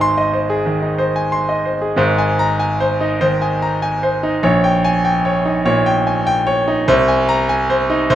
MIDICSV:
0, 0, Header, 1, 2, 480
1, 0, Start_track
1, 0, Key_signature, -4, "major"
1, 0, Tempo, 646552
1, 1466, Time_signature, 4, 2, 24, 8
1, 1931, Tempo, 610998
1, 6290, End_track
2, 0, Start_track
2, 0, Title_t, "Grand piano"
2, 0, Program_c, 0, 0
2, 0, Control_c, 0, 64, 127
2, 0, Note_on_c, 0, 32, 67
2, 0, Note_on_c, 0, 44, 74
2, 0, Note_on_c, 0, 63, 56
2, 0, Note_on_c, 0, 72, 66
2, 0, Note_on_c, 0, 80, 56
2, 9, Note_on_c, 0, 84, 84
2, 84, Note_off_c, 0, 80, 0
2, 131, Note_on_c, 0, 75, 58
2, 204, Note_off_c, 0, 84, 0
2, 249, Note_off_c, 0, 72, 0
2, 249, Note_on_c, 0, 72, 57
2, 325, Note_off_c, 0, 75, 0
2, 368, Note_on_c, 0, 68, 68
2, 444, Note_off_c, 0, 72, 0
2, 461, Note_off_c, 0, 32, 0
2, 464, Note_off_c, 0, 44, 0
2, 490, Note_on_c, 0, 51, 56
2, 564, Note_off_c, 0, 68, 0
2, 612, Note_off_c, 0, 63, 0
2, 612, Note_on_c, 0, 63, 50
2, 685, Note_off_c, 0, 51, 0
2, 731, Note_on_c, 0, 72, 67
2, 808, Note_off_c, 0, 63, 0
2, 859, Note_on_c, 0, 80, 66
2, 928, Note_off_c, 0, 72, 0
2, 981, Note_on_c, 0, 84, 71
2, 1054, Note_off_c, 0, 80, 0
2, 1105, Note_on_c, 0, 75, 54
2, 1177, Note_off_c, 0, 84, 0
2, 1228, Note_on_c, 0, 72, 57
2, 1300, Note_off_c, 0, 75, 0
2, 1348, Note_on_c, 0, 68, 55
2, 1420, Note_off_c, 0, 72, 0
2, 1457, Note_on_c, 0, 32, 76
2, 1465, Note_on_c, 0, 72, 75
2, 1466, Note_off_c, 0, 68, 0
2, 1467, Note_on_c, 0, 44, 88
2, 1482, Control_c, 0, 64, 0
2, 1598, Control_c, 0, 64, 127
2, 1621, Note_on_c, 0, 80, 76
2, 1714, Note_off_c, 0, 72, 0
2, 1776, Note_on_c, 0, 82, 84
2, 1868, Note_off_c, 0, 80, 0
2, 1926, Note_on_c, 0, 80, 75
2, 1930, Note_off_c, 0, 82, 0
2, 2091, Note_on_c, 0, 72, 78
2, 2186, Note_off_c, 0, 80, 0
2, 2250, Note_on_c, 0, 63, 74
2, 2349, Note_off_c, 0, 72, 0
2, 2379, Note_off_c, 0, 32, 0
2, 2385, Note_off_c, 0, 44, 0
2, 2408, Note_on_c, 0, 72, 81
2, 2409, Note_on_c, 0, 51, 72
2, 2508, Note_off_c, 0, 63, 0
2, 2570, Note_on_c, 0, 80, 70
2, 2604, Note_off_c, 0, 51, 0
2, 2667, Note_off_c, 0, 72, 0
2, 2734, Note_on_c, 0, 82, 70
2, 2828, Note_off_c, 0, 80, 0
2, 2891, Note_on_c, 0, 80, 79
2, 2894, Note_off_c, 0, 82, 0
2, 3054, Note_on_c, 0, 72, 67
2, 3149, Note_off_c, 0, 80, 0
2, 3212, Note_on_c, 0, 63, 73
2, 3312, Note_off_c, 0, 72, 0
2, 3369, Note_on_c, 0, 34, 90
2, 3369, Note_on_c, 0, 73, 78
2, 3374, Note_off_c, 0, 63, 0
2, 3389, Control_c, 0, 64, 0
2, 3532, Note_on_c, 0, 79, 77
2, 3534, Control_c, 0, 64, 127
2, 3630, Note_off_c, 0, 73, 0
2, 3694, Note_on_c, 0, 80, 85
2, 3791, Note_off_c, 0, 79, 0
2, 3853, Note_on_c, 0, 79, 77
2, 3856, Note_off_c, 0, 80, 0
2, 4013, Note_on_c, 0, 73, 70
2, 4110, Note_off_c, 0, 79, 0
2, 4172, Note_on_c, 0, 63, 66
2, 4270, Note_off_c, 0, 73, 0
2, 4304, Note_off_c, 0, 34, 0
2, 4331, Note_on_c, 0, 46, 78
2, 4331, Note_on_c, 0, 73, 86
2, 4430, Note_off_c, 0, 63, 0
2, 4493, Note_on_c, 0, 79, 78
2, 4525, Note_off_c, 0, 46, 0
2, 4589, Note_off_c, 0, 73, 0
2, 4654, Note_on_c, 0, 80, 65
2, 4749, Note_off_c, 0, 79, 0
2, 4810, Note_on_c, 0, 79, 86
2, 4814, Note_off_c, 0, 80, 0
2, 4967, Note_on_c, 0, 73, 81
2, 5068, Note_off_c, 0, 79, 0
2, 5132, Note_on_c, 0, 63, 70
2, 5227, Note_off_c, 0, 73, 0
2, 5292, Note_on_c, 0, 36, 98
2, 5292, Note_on_c, 0, 72, 92
2, 5293, Note_off_c, 0, 63, 0
2, 5307, Control_c, 0, 64, 0
2, 5451, Control_c, 0, 64, 127
2, 5451, Note_on_c, 0, 80, 79
2, 5550, Note_off_c, 0, 72, 0
2, 5612, Note_on_c, 0, 82, 92
2, 5710, Note_off_c, 0, 80, 0
2, 5773, Note_on_c, 0, 80, 82
2, 5774, Note_off_c, 0, 82, 0
2, 5935, Note_on_c, 0, 72, 80
2, 6029, Note_off_c, 0, 80, 0
2, 6091, Note_on_c, 0, 63, 76
2, 6189, Note_off_c, 0, 72, 0
2, 6222, Note_off_c, 0, 36, 0
2, 6251, Note_on_c, 0, 72, 90
2, 6252, Note_on_c, 0, 36, 84
2, 6290, Note_off_c, 0, 36, 0
2, 6290, Note_off_c, 0, 63, 0
2, 6290, Note_off_c, 0, 72, 0
2, 6290, End_track
0, 0, End_of_file